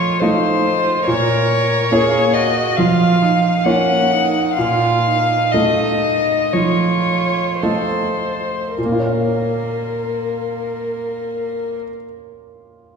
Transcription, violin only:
0, 0, Header, 1, 2, 480
1, 0, Start_track
1, 0, Key_signature, -5, "minor"
1, 0, Tempo, 857143
1, 596, Time_signature, 4, 2, 24, 8
1, 2039, Tempo, 936037
1, 2999, Tempo, 1006711
1, 3479, Tempo, 1086957
1, 3959, Tempo, 1142857
1, 4919, Tempo, 1102941
1, 6256, End_track
2, 0, Start_track
2, 0, Title_t, "Violin"
2, 0, Program_c, 0, 40
2, 0, Note_on_c, 0, 73, 62
2, 110, Note_on_c, 0, 72, 59
2, 119, Note_off_c, 0, 73, 0
2, 593, Note_off_c, 0, 72, 0
2, 600, Note_on_c, 0, 73, 72
2, 1308, Note_on_c, 0, 75, 63
2, 1317, Note_off_c, 0, 73, 0
2, 1551, Note_on_c, 0, 77, 62
2, 1559, Note_off_c, 0, 75, 0
2, 2040, Note_on_c, 0, 78, 71
2, 2048, Note_off_c, 0, 77, 0
2, 2502, Note_off_c, 0, 78, 0
2, 2505, Note_on_c, 0, 77, 67
2, 3000, Note_on_c, 0, 75, 61
2, 3007, Note_off_c, 0, 77, 0
2, 3480, Note_on_c, 0, 73, 52
2, 3487, Note_off_c, 0, 75, 0
2, 3953, Note_off_c, 0, 73, 0
2, 3955, Note_on_c, 0, 72, 43
2, 4436, Note_off_c, 0, 72, 0
2, 4448, Note_on_c, 0, 70, 43
2, 5723, Note_off_c, 0, 70, 0
2, 6256, End_track
0, 0, End_of_file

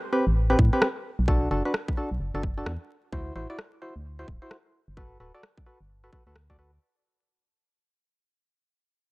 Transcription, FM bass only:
0, 0, Header, 1, 2, 480
1, 0, Start_track
1, 0, Tempo, 461538
1, 1330, Time_signature, 4, 2, 24, 8
1, 9484, End_track
2, 0, Start_track
2, 0, Title_t, "FM bass"
2, 0, Program_c, 0, 39
2, 280, Note_on_c, 0, 33, 90
2, 579, Note_off_c, 0, 33, 0
2, 611, Note_on_c, 0, 45, 101
2, 727, Note_off_c, 0, 45, 0
2, 1238, Note_on_c, 0, 35, 101
2, 1539, Note_off_c, 0, 35, 0
2, 1570, Note_on_c, 0, 30, 101
2, 1686, Note_off_c, 0, 30, 0
2, 2199, Note_on_c, 0, 35, 90
2, 2284, Note_off_c, 0, 35, 0
2, 2290, Note_on_c, 0, 30, 83
2, 2406, Note_off_c, 0, 30, 0
2, 2437, Note_on_c, 0, 30, 94
2, 2738, Note_off_c, 0, 30, 0
2, 2771, Note_on_c, 0, 40, 98
2, 2887, Note_off_c, 0, 40, 0
2, 3251, Note_on_c, 0, 38, 100
2, 3451, Note_off_c, 0, 38, 0
2, 3491, Note_on_c, 0, 33, 100
2, 3607, Note_off_c, 0, 33, 0
2, 4117, Note_on_c, 0, 38, 87
2, 4418, Note_off_c, 0, 38, 0
2, 4450, Note_on_c, 0, 26, 98
2, 4566, Note_off_c, 0, 26, 0
2, 5077, Note_on_c, 0, 31, 103
2, 5378, Note_off_c, 0, 31, 0
2, 5410, Note_on_c, 0, 26, 98
2, 5526, Note_off_c, 0, 26, 0
2, 6038, Note_on_c, 0, 31, 89
2, 6339, Note_off_c, 0, 31, 0
2, 6518, Note_on_c, 0, 38, 98
2, 6752, Note_off_c, 0, 38, 0
2, 6759, Note_on_c, 0, 38, 77
2, 7059, Note_off_c, 0, 38, 0
2, 9484, End_track
0, 0, End_of_file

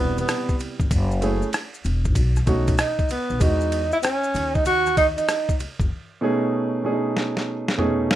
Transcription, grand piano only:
0, 0, Header, 1, 2, 480
1, 0, Start_track
1, 0, Key_signature, 4, "major"
1, 0, Tempo, 625000
1, 698, Time_signature, 4, 2, 24, 8
1, 6263, End_track
2, 0, Start_track
2, 0, Title_t, "Grand piano"
2, 0, Program_c, 0, 0
2, 0, Note_on_c, 0, 48, 58
2, 0, Note_on_c, 0, 55, 66
2, 0, Note_on_c, 0, 59, 58
2, 0, Note_on_c, 0, 64, 68
2, 663, Note_off_c, 0, 55, 0
2, 665, Note_off_c, 0, 59, 0
2, 668, Note_off_c, 0, 48, 0
2, 671, Note_off_c, 0, 64, 0
2, 930, Note_on_c, 0, 57, 79
2, 938, Note_on_c, 0, 61, 67
2, 943, Note_on_c, 0, 64, 72
2, 947, Note_on_c, 0, 68, 85
2, 1124, Note_off_c, 0, 57, 0
2, 1128, Note_off_c, 0, 61, 0
2, 1130, Note_off_c, 0, 64, 0
2, 1133, Note_off_c, 0, 68, 0
2, 1890, Note_on_c, 0, 57, 72
2, 1896, Note_on_c, 0, 61, 71
2, 1898, Note_on_c, 0, 63, 75
2, 1905, Note_on_c, 0, 66, 86
2, 2084, Note_off_c, 0, 57, 0
2, 2087, Note_off_c, 0, 61, 0
2, 2088, Note_off_c, 0, 63, 0
2, 2092, Note_off_c, 0, 66, 0
2, 2609, Note_on_c, 0, 56, 60
2, 2614, Note_on_c, 0, 59, 54
2, 2620, Note_on_c, 0, 63, 58
2, 2625, Note_on_c, 0, 66, 68
2, 2916, Note_off_c, 0, 56, 0
2, 2919, Note_off_c, 0, 59, 0
2, 2922, Note_off_c, 0, 63, 0
2, 2924, Note_off_c, 0, 66, 0
2, 4770, Note_on_c, 0, 47, 89
2, 4774, Note_on_c, 0, 57, 77
2, 4778, Note_on_c, 0, 61, 80
2, 4783, Note_on_c, 0, 63, 81
2, 4788, Note_on_c, 0, 68, 97
2, 5239, Note_off_c, 0, 47, 0
2, 5244, Note_off_c, 0, 57, 0
2, 5248, Note_off_c, 0, 61, 0
2, 5251, Note_on_c, 0, 47, 78
2, 5255, Note_on_c, 0, 57, 74
2, 5256, Note_off_c, 0, 68, 0
2, 5259, Note_on_c, 0, 61, 72
2, 5263, Note_on_c, 0, 62, 57
2, 5267, Note_on_c, 0, 68, 92
2, 5300, Note_off_c, 0, 63, 0
2, 5312, Note_on_c, 0, 63, 72
2, 5326, Note_off_c, 0, 62, 0
2, 5941, Note_off_c, 0, 47, 0
2, 5943, Note_off_c, 0, 57, 0
2, 5945, Note_off_c, 0, 61, 0
2, 5949, Note_off_c, 0, 68, 0
2, 5972, Note_off_c, 0, 63, 0
2, 5973, Note_on_c, 0, 47, 84
2, 5976, Note_on_c, 0, 57, 77
2, 5977, Note_on_c, 0, 61, 77
2, 5985, Note_on_c, 0, 63, 81
2, 5988, Note_on_c, 0, 68, 91
2, 6263, Note_off_c, 0, 47, 0
2, 6263, Note_off_c, 0, 57, 0
2, 6263, Note_off_c, 0, 61, 0
2, 6263, Note_off_c, 0, 63, 0
2, 6263, Note_off_c, 0, 68, 0
2, 6263, End_track
0, 0, End_of_file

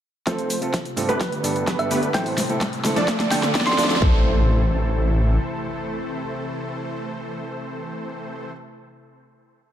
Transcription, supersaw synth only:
0, 0, Header, 1, 2, 480
1, 0, Start_track
1, 0, Key_signature, 0, "minor"
1, 0, Tempo, 468750
1, 275, Time_signature, 4, 2, 24, 8
1, 9958, End_track
2, 0, Start_track
2, 0, Title_t, "Supersaw synth"
2, 0, Program_c, 0, 81
2, 274, Note_on_c, 0, 53, 79
2, 274, Note_on_c, 0, 57, 71
2, 274, Note_on_c, 0, 60, 73
2, 274, Note_on_c, 0, 69, 71
2, 274, Note_on_c, 0, 72, 85
2, 575, Note_off_c, 0, 53, 0
2, 575, Note_off_c, 0, 57, 0
2, 575, Note_off_c, 0, 60, 0
2, 575, Note_off_c, 0, 69, 0
2, 575, Note_off_c, 0, 72, 0
2, 1113, Note_on_c, 0, 67, 87
2, 1113, Note_on_c, 0, 71, 110
2, 1114, Note_on_c, 0, 50, 95
2, 1114, Note_on_c, 0, 57, 92
2, 1114, Note_on_c, 0, 59, 86
2, 1685, Note_off_c, 0, 67, 0
2, 1685, Note_off_c, 0, 71, 0
2, 1686, Note_off_c, 0, 50, 0
2, 1686, Note_off_c, 0, 57, 0
2, 1686, Note_off_c, 0, 59, 0
2, 1714, Note_on_c, 0, 50, 99
2, 1714, Note_on_c, 0, 67, 84
2, 1714, Note_on_c, 0, 71, 104
2, 1715, Note_on_c, 0, 57, 88
2, 1715, Note_on_c, 0, 59, 90
2, 1926, Note_off_c, 0, 50, 0
2, 1926, Note_off_c, 0, 57, 0
2, 1926, Note_off_c, 0, 59, 0
2, 1926, Note_off_c, 0, 67, 0
2, 1926, Note_off_c, 0, 71, 0
2, 1954, Note_on_c, 0, 67, 86
2, 1955, Note_on_c, 0, 50, 95
2, 1955, Note_on_c, 0, 57, 84
2, 1955, Note_on_c, 0, 59, 86
2, 1955, Note_on_c, 0, 71, 103
2, 2143, Note_off_c, 0, 50, 0
2, 2143, Note_off_c, 0, 57, 0
2, 2143, Note_off_c, 0, 59, 0
2, 2143, Note_off_c, 0, 67, 0
2, 2143, Note_off_c, 0, 71, 0
2, 2195, Note_on_c, 0, 52, 82
2, 2195, Note_on_c, 0, 57, 74
2, 2195, Note_on_c, 0, 60, 70
2, 2195, Note_on_c, 0, 69, 76
2, 2195, Note_on_c, 0, 72, 89
2, 2495, Note_off_c, 0, 69, 0
2, 2495, Note_off_c, 0, 72, 0
2, 2496, Note_off_c, 0, 52, 0
2, 2496, Note_off_c, 0, 57, 0
2, 2496, Note_off_c, 0, 60, 0
2, 3035, Note_on_c, 0, 53, 97
2, 3035, Note_on_c, 0, 57, 88
2, 3035, Note_on_c, 0, 62, 89
2, 3035, Note_on_c, 0, 69, 89
2, 3035, Note_on_c, 0, 74, 111
2, 3606, Note_off_c, 0, 53, 0
2, 3606, Note_off_c, 0, 57, 0
2, 3606, Note_off_c, 0, 62, 0
2, 3606, Note_off_c, 0, 69, 0
2, 3606, Note_off_c, 0, 74, 0
2, 3635, Note_on_c, 0, 53, 97
2, 3635, Note_on_c, 0, 69, 92
2, 3636, Note_on_c, 0, 57, 86
2, 3636, Note_on_c, 0, 62, 86
2, 3636, Note_on_c, 0, 74, 107
2, 3846, Note_off_c, 0, 53, 0
2, 3846, Note_off_c, 0, 69, 0
2, 3847, Note_off_c, 0, 57, 0
2, 3847, Note_off_c, 0, 62, 0
2, 3847, Note_off_c, 0, 74, 0
2, 3875, Note_on_c, 0, 69, 85
2, 3876, Note_on_c, 0, 53, 96
2, 3876, Note_on_c, 0, 57, 86
2, 3876, Note_on_c, 0, 62, 85
2, 3876, Note_on_c, 0, 74, 102
2, 4063, Note_off_c, 0, 53, 0
2, 4063, Note_off_c, 0, 57, 0
2, 4063, Note_off_c, 0, 62, 0
2, 4063, Note_off_c, 0, 69, 0
2, 4063, Note_off_c, 0, 74, 0
2, 4115, Note_on_c, 0, 52, 88
2, 4115, Note_on_c, 0, 57, 82
2, 4115, Note_on_c, 0, 60, 82
2, 4115, Note_on_c, 0, 69, 82
2, 4115, Note_on_c, 0, 72, 100
2, 8717, Note_off_c, 0, 52, 0
2, 8717, Note_off_c, 0, 57, 0
2, 8717, Note_off_c, 0, 60, 0
2, 8717, Note_off_c, 0, 69, 0
2, 8717, Note_off_c, 0, 72, 0
2, 9958, End_track
0, 0, End_of_file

